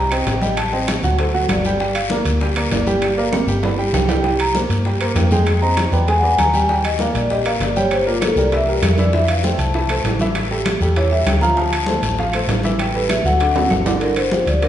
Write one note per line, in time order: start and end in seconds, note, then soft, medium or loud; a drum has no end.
0.00 0.23 C2 medium
0.11 0.37 C4 medium
0.11 0.37 C5 medium
0.11 0.37 D#5 medium
0.11 0.40 G5 loud
0.11 high bongo soft
0.11 high conga soft
0.11 high timbale medium
0.11 claves medium
0.26 0.97 A1 medium
0.26 high bongo medium
0.26 low bongo medium
0.26 high conga soft
0.26 high timbale medium
0.26 short guiro medium
0.41 0.67 G3 medium
0.41 0.67 G4 medium
0.41 0.57 D#5 medium
0.41 0.68 G5 medium
0.41 high bongo soft
0.41 high conga medium
0.41 short guiro medium
0.57 0.72 A5 medium
0.57 high bongo medium
0.57 high conga soft
0.57 high timbale medium
0.57 long guiro medium
0.57 claves medium
0.72 0.98 C4 medium
0.72 0.98 C5 medium
0.72 0.98 D#5 medium
0.72 0.82 G5 medium
0.72 high bongo soft
0.72 high conga soft
0.87 high bongo medium
0.87 high conga loud
0.87 high timbale loud
0.87 short guiro medium
0.87 claves medium
1.03 1.46 D2 loud
1.03 1.16 F#3 medium
1.03 1.16 F#4 medium
1.03 1.16 F#5 medium
1.03 high conga soft
1.03 short guiro medium
1.18 1.31 A3 medium
1.18 1.32 A4 medium
1.18 1.32 C5 medium
1.18 high bongo medium
1.18 high conga soft
1.18 high timbale medium
1.18 long guiro medium
1.34 1.59 F#3 medium
1.34 1.59 F#4 medium
1.34 1.59 F#5 medium
1.34 high conga soft
1.49 2.20 G1 medium
1.49 1.92 D5 medium
1.49 high bongo medium
1.49 low bongo medium
1.49 high conga medium
1.49 high timbale medium
1.49 short guiro medium
1.49 claves medium
1.64 1.77 G3 loud
1.64 1.78 G4 medium
1.64 1.78 G5 medium
1.64 high bongo soft
1.64 short guiro medium
1.80 2.05 G3 medium
1.80 2.05 G4 medium
1.80 2.05 G5 medium
1.80 high bongo medium
1.80 high conga soft
1.80 long guiro medium
1.95 2.10 F5 loud
1.95 high bongo soft
1.95 high conga soft
1.95 high timbale loud
1.95 claves medium
2.10 2.36 A#3 medium
2.10 2.36 A#4 medium
2.10 2.36 D5 medium
2.10 high bongo medium
2.10 high conga medium
2.10 short guiro medium
2.25 2.68 D2 loud
2.25 high conga soft
2.25 high timbale medium
2.25 short guiro medium
2.41 2.54 G3 medium
2.41 2.54 G4 medium
2.41 2.54 G5 medium
2.41 high bongo medium
2.41 high conga soft
2.41 long guiro medium
2.56 2.82 A#3 medium
2.56 2.82 A#4 medium
2.56 2.82 D5 medium
2.56 high bongo soft
2.56 high conga soft
2.56 high timbale medium
2.56 claves medium
2.71 3.42 G1 medium
2.71 3.14 D5 medium
2.71 high bongo medium
2.71 low bongo medium
2.71 high conga soft
2.71 high timbale medium
2.71 low timbale medium
2.71 short guiro medium
2.87 3.12 G3 medium
2.87 3.12 G4 medium
2.87 3.12 G5 medium
2.87 high bongo soft
2.87 high conga medium
2.87 short guiro medium
3.02 high bongo medium
3.02 high conga soft
3.02 high timbale medium
3.02 long guiro medium
3.02 claves medium
3.17 3.43 A#3 medium
3.17 3.43 A#4 medium
3.17 3.43 D5 medium
3.17 3.32 F5 medium
3.17 high bongo soft
3.17 high conga soft
3.32 high bongo medium
3.32 high conga medium
3.32 high timbale medium
3.32 short guiro medium
3.32 claves medium
3.47 3.90 G1 loud
3.47 3.60 G3 medium
3.47 3.61 G4 medium
3.47 3.61 G5 medium
3.47 high conga soft
3.47 short guiro medium
3.63 3.76 B3 medium
3.63 3.76 B4 medium
3.63 3.76 D5 medium
3.63 high bongo medium
3.63 high conga soft
3.63 low timbale medium
3.63 long guiro medium
3.78 4.04 G3 medium
3.78 4.04 G4 medium
3.78 4.04 G5 medium
3.78 high conga soft
3.93 4.64 C2 medium
3.93 4.37 G5 medium
3.93 high bongo medium
3.93 low bongo medium
3.93 high conga medium
3.93 low timbale loud
3.93 short guiro medium
3.93 claves medium
4.09 4.21 G3 medium
4.09 4.22 G4 loud
4.09 4.22 G5 medium
4.09 high bongo soft
4.09 low timbale loud
4.09 short guiro medium
4.24 4.49 G3 medium
4.24 4.49 G4 medium
4.24 4.50 G5 medium
4.24 high bongo medium
4.24 high conga soft
4.24 long guiro medium
4.39 4.55 A#5 loud
4.39 high bongo soft
4.39 high conga soft
4.39 high timbale medium
4.39 claves medium
4.55 4.80 A#3 medium
4.55 4.80 A#4 medium
4.55 4.80 C5 medium
4.55 high bongo medium
4.55 high conga medium
4.55 short guiro medium
4.69 5.12 G2 medium
4.69 high conga soft
4.69 high timbale medium
4.69 short guiro medium
4.85 4.98 G3 medium
4.85 4.98 G4 medium
4.85 4.99 G5 medium
4.85 high bongo medium
4.85 high conga soft
4.85 long guiro medium
5.01 5.26 A#3 medium
5.01 5.26 A#4 medium
5.01 5.26 C5 medium
5.01 high bongo soft
5.01 high conga soft
5.01 high timbale medium
5.01 claves medium
5.15 5.86 F2 medium
5.15 5.59 G5 medium
5.15 high bongo medium
5.15 low bongo medium
5.15 high conga soft
5.15 high timbale medium
5.15 low timbale medium
5.15 short guiro medium
5.31 5.57 G#3 medium
5.31 5.57 G#4 medium
5.31 5.57 G5 medium
5.31 high bongo soft
5.31 high conga medium
5.31 short guiro medium
5.46 high bongo medium
5.46 high conga soft
5.46 high timbale medium
5.46 long guiro medium
5.46 claves medium
5.62 5.87 C4 medium
5.62 5.87 C5 medium
5.62 5.87 D#5 medium
5.62 5.71 A#5 loud
5.62 high bongo soft
5.62 high conga soft
5.77 high bongo medium
5.77 high conga medium
5.77 high timbale loud
5.77 short guiro medium
5.77 claves medium
5.92 6.35 E2 medium
5.92 6.05 B3 medium
5.92 6.05 B4 medium
5.92 6.06 D5 medium
5.92 6.07 G5 loud
5.92 high conga soft
5.92 short guiro medium
6.08 6.20 G#3 medium
6.08 6.21 G#4 medium
6.08 6.18 G#5 loud
6.08 6.21 G#5 medium
6.08 high bongo medium
6.08 high conga soft
6.08 high timbale medium
6.08 long guiro medium
6.19 6.28 F#5 medium
6.23 6.48 B3 medium
6.23 6.48 B4 medium
6.23 6.48 D5 medium
6.23 high conga soft
6.28 6.38 G#5 loud
6.38 7.09 D#2 medium
6.38 6.53 A#5 loud
6.38 high bongo medium
6.38 low bongo medium
6.38 high conga medium
6.38 high timbale medium
6.38 short guiro medium
6.38 claves medium
6.53 6.66 G3 loud
6.53 6.66 G4 medium
6.53 6.67 G5 medium
6.53 6.68 G#5 medium
6.53 high bongo soft
6.53 high conga medium
6.53 short guiro medium
6.69 6.94 G3 medium
6.69 6.94 G4 medium
6.69 6.84 G5 medium
6.69 6.95 G5 medium
6.69 high bongo medium
6.69 high conga soft
6.69 long guiro medium
6.84 6.99 D#5 medium
6.84 high bongo soft
6.84 high conga soft
6.84 high timbale medium
6.84 claves medium
6.99 7.25 A#3 medium
6.99 7.25 A#4 medium
6.99 7.25 D5 medium
6.99 7.15 F5 loud
6.99 high bongo medium
6.99 high conga loud
6.99 short guiro medium
7.14 7.57 A#1 medium
7.14 7.30 D5 medium
7.14 high conga soft
7.14 high timbale medium
7.14 short guiro medium
7.30 7.43 G3 medium
7.30 7.43 G4 medium
7.30 7.45 D#5 medium
7.30 7.43 G5 medium
7.30 high bongo medium
7.30 high conga soft
7.30 long guiro medium
7.45 7.70 A#3 medium
7.45 7.70 A#4 medium
7.45 7.71 D5 medium
7.45 7.61 F5 loud
7.45 high bongo soft
7.45 high conga soft
7.45 high timbale medium
7.45 claves medium
7.60 8.31 G1 medium
7.60 7.76 D5 medium
7.60 high bongo medium
7.60 low bongo medium
7.60 high conga soft
7.60 high timbale medium
7.60 short guiro medium
7.76 8.01 G3 medium
7.76 8.01 G4 medium
7.76 7.91 C#5 medium
7.76 8.01 G5 loud
7.76 high bongo soft
7.76 high conga medium
7.76 short guiro medium
7.91 8.06 C5 medium
7.91 high bongo medium
7.91 high conga soft
7.91 high timbale medium
7.91 long guiro medium
7.91 claves medium
8.07 8.32 A#3 medium
8.07 8.21 F4 medium
8.07 8.32 A#4 medium
8.07 8.32 D5 medium
8.07 high bongo soft
8.07 high conga soft
8.21 8.37 A4 medium
8.21 high bongo medium
8.21 high conga medium
8.21 high timbale loud
8.21 short guiro medium
8.21 claves medium
8.36 8.79 C2 loud
8.36 8.50 G3 medium
8.36 8.50 G4 medium
8.36 8.50 A#4 medium
8.36 8.52 D5 medium
8.36 high conga soft
8.36 short guiro medium
8.52 8.65 E3 medium
8.52 8.65 E4 medium
8.52 8.67 E5 loud
8.52 8.65 E5 medium
8.52 high bongo medium
8.52 high conga soft
8.52 high timbale medium
8.52 long guiro medium
8.68 8.93 G3 medium
8.68 8.83 G4 medium
8.68 8.93 G4 medium
8.68 8.93 A#4 medium
8.68 high conga soft
8.82 9.53 F2 medium
8.82 8.98 A#4 medium
8.82 high bongo medium
8.82 low bongo medium
8.82 high conga medium
8.82 high timbale loud
8.82 short guiro medium
8.82 claves medium
8.98 9.11 E3 medium
8.98 9.11 E4 medium
8.98 9.13 D5 medium
8.98 9.11 E5 medium
8.98 high bongo soft
8.98 high conga medium
8.98 short guiro medium
9.13 9.38 E3 medium
9.13 9.39 E4 medium
9.13 9.28 E5 loud
9.13 9.39 E5 medium
9.13 high bongo medium
9.13 high conga soft
9.13 long guiro medium
9.28 high bongo soft
9.28 high conga soft
9.28 high timbale medium
9.28 claves medium
9.43 9.69 A3 medium
9.43 9.69 A4 medium
9.43 9.69 C5 medium
9.43 9.58 G5 medium
9.43 high bongo medium
9.43 high conga medium
9.43 short guiro medium
9.58 10.01 C2 medium
9.58 10.01 A5 medium
9.58 high conga soft
9.58 high timbale medium
9.58 short guiro medium
9.74 9.87 E3 medium
9.74 9.87 E4 medium
9.74 9.87 E5 medium
9.74 high bongo medium
9.74 high conga soft
9.74 long guiro medium
9.89 10.15 A3 medium
9.89 10.15 A4 medium
9.89 10.15 C5 medium
9.89 high bongo soft
9.89 high conga soft
9.89 high timbale loud
9.89 claves medium
10.04 10.75 A1 medium
10.04 high bongo medium
10.04 low bongo medium
10.04 high conga soft
10.04 high timbale medium
10.04 low timbale medium
10.04 short guiro medium
10.19 10.45 E3 medium
10.19 10.46 E4 loud
10.19 10.46 E5 medium
10.19 high bongo soft
10.19 high conga medium
10.19 short guiro medium
10.35 high bongo medium
10.35 high conga soft
10.35 high timbale medium
10.35 long guiro medium
10.35 claves medium
10.50 10.76 G3 medium
10.50 10.76 G4 medium
10.50 10.76 A4 medium
10.50 high bongo soft
10.50 high conga soft
10.65 high bongo medium
10.65 high conga loud
10.65 high timbale loud
10.65 short guiro medium
10.65 claves medium
10.80 11.23 E2 medium
10.80 10.94 G3 medium
10.80 10.94 G4 medium
10.80 10.94 A4 medium
10.80 high conga soft
10.80 short guiro medium
10.96 11.09 E3 medium
10.96 11.09 E4 medium
10.96 11.11 C#5 medium
10.96 11.09 E5 medium
10.96 high bongo medium
10.96 high conga soft
10.96 high timbale medium
10.96 long guiro medium
11.11 11.37 G3 medium
11.11 11.37 G4 medium
11.11 11.37 A4 medium
11.11 11.26 E5 medium
11.11 high conga soft
11.26 11.97 D2 medium
11.26 11.41 G5 medium
11.26 high bongo medium
11.26 low bongo medium
11.26 high conga medium
11.26 high timbale loud
11.26 short guiro medium
11.26 claves medium
11.41 11.55 F3 medium
11.41 11.55 F4 medium
11.41 11.55 F5 medium
11.41 11.56 A#5 loud
11.41 high bongo soft
11.41 high conga medium
11.41 short guiro medium
11.57 11.82 F3 medium
11.57 11.83 F4 medium
11.57 11.83 F5 medium
11.57 12.14 A5 loud
11.57 high bongo medium
11.57 high conga soft
11.57 long guiro medium
11.72 high bongo soft
11.72 high conga soft
11.72 high timbale medium
11.72 claves medium
11.86 12.13 A3 medium
11.86 12.13 A4 medium
11.86 12.13 C5 medium
11.86 high bongo medium
11.86 high conga medium
11.86 short guiro medium
12.02 12.45 A1 loud
12.02 high conga soft
12.02 high timbale medium
12.02 short guiro medium
12.17 12.31 F3 medium
12.17 12.31 F4 medium
12.17 12.31 F5 medium
12.17 high bongo medium
12.17 high conga soft
12.17 long guiro medium
12.33 12.59 A3 medium
12.33 12.59 A4 medium
12.33 12.59 C5 medium
12.33 high bongo soft
12.33 high conga soft
12.33 high timbale medium
12.33 claves medium
12.47 13.19 A1 medium
12.47 high bongo medium
12.47 low bongo medium
12.47 high conga soft
12.47 high timbale medium
12.47 low timbale medium
12.47 short guiro medium
12.63 12.89 E3 loud
12.63 12.89 E4 medium
12.63 12.90 E5 medium
12.63 high bongo soft
12.63 high conga medium
12.63 short guiro medium
12.79 12.94 G5 medium
12.79 high bongo medium
12.79 high conga soft
12.79 high timbale medium
12.79 long guiro medium
12.79 claves medium
12.94 13.20 G3 medium
12.94 13.20 G4 medium
12.94 13.20 A4 medium
12.94 13.09 B4 medium
12.94 high bongo soft
12.94 high conga soft
13.09 13.24 E5 medium
13.09 high bongo medium
13.09 high conga loud
13.09 high timbale loud
13.09 short guiro medium
13.09 claves medium
13.24 13.67 D2 loud
13.24 13.38 F#3 medium
13.24 13.38 F#4 medium
13.24 13.38 A4 medium
13.24 13.68 F#5 medium
13.24 high conga soft
13.24 short guiro medium
13.40 13.53 D3 medium
13.40 13.53 D4 medium
13.40 13.53 D5 medium
13.40 high bongo medium
13.40 high conga soft
13.40 high timbale medium
13.40 long guiro medium
13.55 13.81 F#3 medium
13.55 13.81 F#4 medium
13.55 13.81 A4 medium
13.55 high bongo medium
13.55 high conga soft
13.55 high timbale loud
13.70 14.41 G1 medium
13.70 low bongo medium
13.70 high conga medium
13.70 low timbale medium
13.70 short guiro medium
13.70 claves medium
13.86 13.99 D3 medium
13.86 13.99 D4 medium
13.86 13.99 D5 medium
13.86 low bongo medium
13.86 low timbale loud
13.86 short guiro medium
14.01 14.26 D3 medium
14.01 14.26 D4 medium
14.01 14.17 A#4 medium
14.01 14.27 D5 medium
14.01 high bongo medium
14.01 high conga soft
14.01 high timbale medium
14.01 long guiro medium
14.16 14.31 C5 medium
14.16 high bongo soft
14.16 high conga soft
14.16 high timbale medium
14.16 claves medium
14.31 14.57 F3 medium
14.31 14.57 F4 medium
14.31 14.57 G4 medium
14.31 14.46 C5 medium
14.31 high bongo medium
14.31 high conga medium
14.31 low timbale medium
14.31 short guiro medium
14.46 14.68 D2 medium
14.46 14.54 D5 medium
14.46 high bongo soft
14.46 high conga soft
14.46 high timbale medium
14.46 short guiro medium
14.62 14.68 D3 medium
14.62 14.68 D4 medium
14.62 14.68 A#4 medium
14.62 14.68 D5 medium
14.62 high bongo medium
14.62 high conga soft
14.62 high timbale medium
14.62 long guiro medium